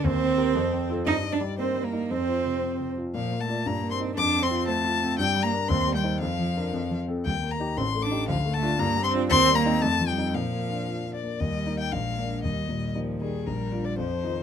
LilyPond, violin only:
\new Staff \with { instrumentName = "Violin" } { \time 2/4 \key bes \major \tempo 4 = 116 c''4.~ c''16 r16 | ees''8 d''8 c''8 bes'8 | c''4. r8 | f''8 a''8 bes''8 c'''8 |
d'''8 c'''8 a''4 | g''8 bes''8 c'''8 g''8 | f''4. r8 | g''8 bes''8 c'''8 d'''8 |
f''8 a''8 bes''8 c'''8 | c'''8 bes''8 a''8 g''8 | f''4. d''8 | \key ees \major ees''8. g''16 f''4 |
ees''4 r8 aes'8 | bes'8. d''16 c''4 | }